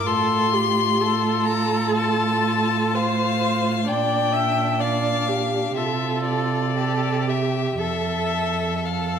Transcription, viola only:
0.07 A4
0.54 G4
1.01 A4
2.95 C5
3.88 D5
4.33 E5
4.80 D5
5.28 G4
5.78 A4
6.77 A4
7.28 G4
7.79 A4
8.85 A4

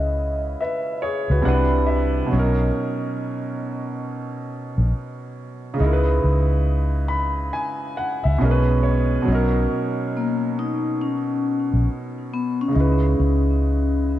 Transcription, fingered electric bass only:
Already playing: C#2
1.30 C#2
1.46 C2
2.33 B1
4.78 A#1
5.80 C#2
6.24 C#2
8.25 C#2
8.41 B1
9.28 B1
11.73 A#1
12.76 C#2
13.20 C#2

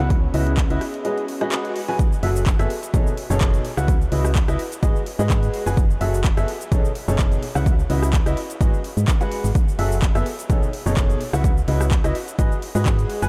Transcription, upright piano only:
0.00 C#3 E4 F#4 B4 F#5
0.34 C#3 E4 F#4 B4 D#5
0.70 E4 F#4 B4 D#5
1.05 G#3 F#4 G#4 B4 D#5
1.41 G#3 F#4 G#4 B4 D#5
1.88 F#3 F#4 G#4 B4 G#5
2.23 F#3 F#4 G#4 A4 E5
2.59 B3 F#4 G#4 A4 E5
2.94 B2 D#4 G#4 A4 C#5
3.30 B2 D#4 G#4 A4 C#5
3.77 C#3 E4 F#4 B4 F#5
4.12 C#3 E4 F#4 B4 D#5
4.48 E4 F#4 B4 D#5
4.83 G#3 F#4 G#4 B4 D#5
5.19 G#3 F#4 G#4 B4 D#5
5.66 F#3 F#4 G#4 B4 G#5
6.01 F#3 F#4 G#4 A4 E5
6.37 B3 F#4 G#4 A4 E5
6.72 B2 D#4 G#4 A4 C#5
7.08 B2 D#4 G#4 A4 C#5
7.55 C#3 E4 F#4 B4 F#5
7.90 C#3 E4 F#4 B4 D#5
8.26 E4 F#4 B4 D#5
8.61 G#3 F#4 G#4 B4 D#5
9.21 G#3 F#4 G#4 B4 F#5
9.79 F#3 F#4 G#4 A4 E5
10.15 B3 F#4 G#4 A4 E5
10.50 B2 D#4 G#4 A4 C#5
10.86 B2 D#4 G#4 A4 C#5
11.33 C#3 E4 F#4 B4 F#5
11.68 C#3 E4 F#4 B4 D#5
12.04 E4 F#4 B4 D#5
12.39 G#3 F#4 G#4 B4 D#5
12.75 G#3 F#4 G#4 B4 D#5
13.22 F#3 F#4 G#4 B4 G#5

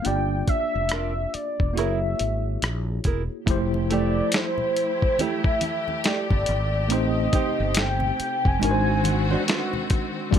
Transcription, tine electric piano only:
0.02 A#3 D4 F4 G4
0.07 D5
1.73 A#3 E4 F#4 G#4
1.78 C#5
3.46 F3 A3 E4 G4
3.51 C5
6.88 A3 C4 D#4 G4
6.93 C5
8.59 G#3 D4 D#4 F#4
8.65 A#4
8.71 C5
10.31 G3 A#3 D4 F4

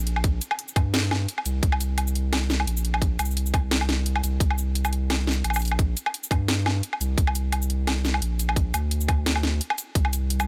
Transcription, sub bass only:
Already playing: A#1
0.76 G2
1.46 C2
1.63 C2
2.67 A#1
3.19 C2
4.23 C2
4.40 C2
5.45 A#1
6.31 G2
7.00 C2
7.18 C2
8.22 A#1
8.74 D2
9.95 C2

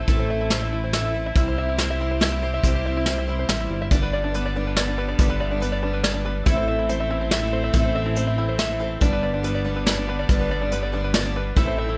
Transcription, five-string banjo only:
Already playing: E4 C5 E5
0.19 C5
0.30 E5
0.41 E4
0.52 C5
0.62 E5
0.73 E4
0.84 C5
0.94 E5
1.05 E4
1.26 E5
1.37 E4
1.48 C5
1.58 E5
1.69 E4
1.79 C5
1.90 E5
2.01 E4
2.11 C5
2.22 E5
2.32 E4
2.43 C5
2.54 E5
2.75 C5
2.86 E5
2.97 E4
3.08 C5
3.18 E5
3.29 E4
3.39 C5
3.50 E5
3.60 E4
3.82 E5
3.92 D4
4.03 B4
4.13 D5
4.24 D4
4.35 B4
4.46 D5
4.56 D4
4.67 B4
4.77 D5
4.88 D4
4.98 B4
5.08 D5
5.30 B4
5.40 D5
5.51 D4
5.62 B4
5.72 D5
5.83 D4
5.93 B4
6.03 D5
6.14 D4
6.25 B4
6.46 E4
6.57 C5
6.68 E5
6.79 E4
6.89 C5
7.00 E5
7.10 E4
7.21 C5
7.32 E5
7.42 E4
7.53 C5
7.64 E5
7.85 C5
7.96 E5
8.06 E4
8.17 C5
8.27 E5
8.38 E4
8.49 C5
8.59 E5
8.70 E4
8.80 C5
9.02 D4
9.12 B4
9.23 D5
9.34 D4
9.44 B4
9.55 D5
9.65 D4
9.76 B4
9.86 D5
9.98 D4
10.09 B4
10.19 D5
10.41 B4
10.51 D5
10.61 D4
10.72 B4
10.83 D5
10.94 D4
11.04 B4
11.15 D5
11.26 D4
11.36 B4
11.57 E4
11.67 C5
11.78 E5
11.89 E4

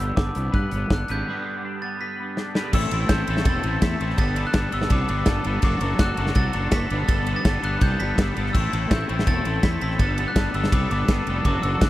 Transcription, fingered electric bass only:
0.00 G1
0.17 G1
0.36 C2
0.53 G2
0.72 G1
0.90 G1
1.10 G#1
2.74 A1
2.92 A1
3.10 A1
3.28 A1
3.46 E1
3.64 A1
3.82 E2
4.01 A1
4.19 G1
4.55 G1
4.73 G1
4.91 C2
5.10 G1
5.27 G1
5.45 G1
5.63 F#1
5.81 F#1
5.99 F#1
6.18 F#1
6.36 C2
6.55 F#1
6.72 F#1
6.91 G1
7.09 G1
7.45 G1
7.63 G1
7.82 C2
8.00 G1
8.18 G1
8.37 G1
8.55 A1
8.73 A1
8.91 A1
9.10 A1
9.27 E1
9.45 A1
9.64 E2
9.82 A1
9.99 G1
10.36 G1
10.54 G1
10.73 C2
10.91 G1
11.09 G1
11.27 F1
11.45 F#1
11.63 F#1
11.82 F#1

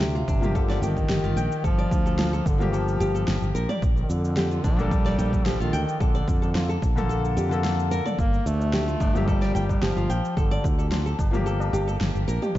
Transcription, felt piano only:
0.40 F3 A#3
0.44 G4
2.58 F3 A#3 G4
4.76 A#3 D4 A4
6.96 D3 A#3 A4
7.49 D3 A#3
7.53 A4
9.13 F3 A#3
9.17 G4
11.31 F3 A#3
11.35 G4

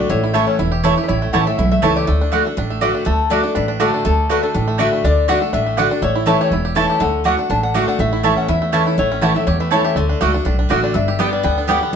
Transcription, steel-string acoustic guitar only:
0.09 A2
0.34 E3 A3 C#4 E4
0.59 E2
0.83 E3 A3 C#4 E4
0.97 C#4 E4
1.09 A2
1.33 E3 A3 C#4 E4
1.46 C#4 E4
1.59 E2
1.82 E3 A3 C#4 E4
2.07 D3
2.32 D3 A3 D4 F#4
2.45 D4 F#4
2.57 A2
2.81 D3 A3 D4 F#4
3.05 D3
3.30 D3 A3 D4 F#4
3.43 D4 F#4
3.56 A2
3.80 D3 A3 D4 F#4
4.05 D3
4.30 D3 A3 D4 F#4
4.54 A2
4.79 D3 A3 D4 F#4
5.05 D3
5.28 D3 A3 D4 F#4
5.42 D4 F#4
5.54 A2
5.78 D3 A3 D4 F#4
5.91 D4 F#4
6.02 A2
6.26 E3 A3 C#4 E4
6.52 E2
6.75 E3 A3 C#4 E4
7.00 D3
7.24 D3 A3 D4 F#4
7.37 D4 F#4
7.50 A2
7.74 D3 A3 D4 F#4
7.99 A2
8.23 E3 A3 C#4 E4
8.48 E2
8.73 E3 A3 C#4 E4
8.98 A2
9.21 E3 A3 C#4 E4
9.35 C#4 E4
9.47 E2
9.71 E3 A3 C#4 E4
9.97 D3
10.21 D3 A3 D4 F#4
10.33 D4 F#4
10.45 A2
10.69 D3 A3 D4 F#4
10.94 G2
11.19 G3 B3 D4 G4
11.43 D3
11.67 G3 B3 D4 G4
11.81 D4 G4

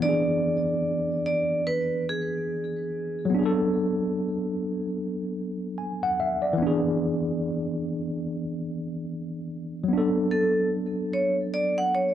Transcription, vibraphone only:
0.02 D5
1.26 D5
1.67 B4
2.09 G#4
10.31 A4
11.13 C#5
11.54 D5
11.78 F#5
11.95 C#5

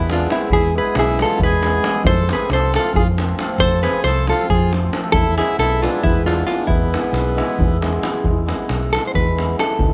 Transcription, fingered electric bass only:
Already playing: E2
0.51 E2
0.96 B1
1.40 E2
2.04 F2
2.50 C2
2.94 F2
3.58 F2
4.04 C2
4.50 F2
5.13 E2
5.59 B1
6.04 E2
6.68 E2
7.13 B1
7.59 E2
8.24 E2
8.70 B1
9.15 E2
9.79 D2

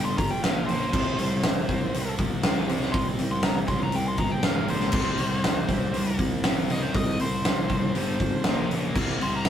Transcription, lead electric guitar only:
0.05 C6
0.18 A#5
0.30 G5
0.43 F5
0.66 C5
2.92 C6
3.32 C6
3.44 A#5
3.68 C6
3.83 A#5
3.96 G5
4.08 C6
4.18 A#5
4.32 G5
4.44 F5
4.70 C5
6.71 D#5
6.83 C5
6.96 D#5
7.21 C5
9.23 C6
9.35 A#5

